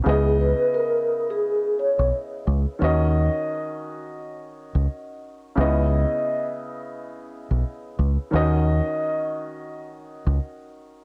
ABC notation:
X:1
M:4/4
L:1/16
Q:"Swing 16ths" 1/4=87
K:C#m
V:1 name="Vibraphone"
G2 B2 ^A3 G3 c2 z4 | z16 | z16 | z16 |]
V:2 name="Grand piano"
[C,B,Ed]16 | [D,CFd]16 | [C,B,Ed]16 | [D,CFd]16 |]
V:3 name="Fingered electric bass" clef=bass
C,,3 z8 B,,, z2 C,, z | D,,3 z8 C,, z4 | C,,3 z8 B,,, z2 C,, z | D,,3 z8 C,, z4 |]